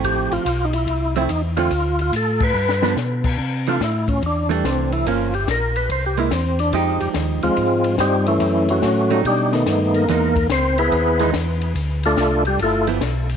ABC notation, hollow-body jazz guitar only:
X:1
M:4/4
L:1/8
Q:"Swing" 1/4=143
K:Flyd
V:1 name="Hollow-body jazz guitar"
[F,A,CE]2 z3 [F,A,CE] z [D,A,CF] | z4 z [F,B,D] z2 | z [E,A,D] z3 [E,A,D]3 | [F,_B,_D] z4 [_A,B,E] z2 |
[F,_A,_EG]4- [F,A,EG] z3 | z3 [G,A,_E] z4 | [E,^G,B,^D] z4 [E,G,B,D] z2 | z4 z [F,B,E] z2 |]